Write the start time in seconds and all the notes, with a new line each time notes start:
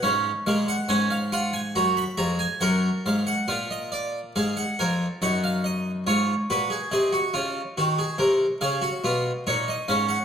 0.03 G#2 C#4 F5
0.47 A#2 G#3 F5
0.68 F#5
0.89 G#2 C#4 G#5
1.10 F5
1.32 F4 F#5
1.53 G#5
1.75 F#2 F#4 A#5
1.97 B5
2.17 F2 G#4 A#5
2.39 G#5
2.61 F#2 A#4 F#5
3.06 G#2 F5
3.27 F#5
3.48 A#2 F4 F5
3.71 D#5
3.92 D5
4.36 G#2 G#4 F5
4.57 F#5
4.79 F2 A#4 G#5
5.22 F#2 D#4 F#5
5.44 F5
5.64 D#5
6.07 G#2 F4 C#5
6.50 A#2 F#4 B4
6.70 G#4
6.92 C3 G#4 D#5
7.12 F#4
7.34 C#3 F4
7.78 D#3 F#4
7.99 G#4
8.18 C3 A#4
8.61 C#3 G#4 F5
8.82 F#4
9.04 B2 F4
9.47 A#2 D#4 C#5
9.68 D#5
9.88 G#2 C#4 F5
10.09 F#5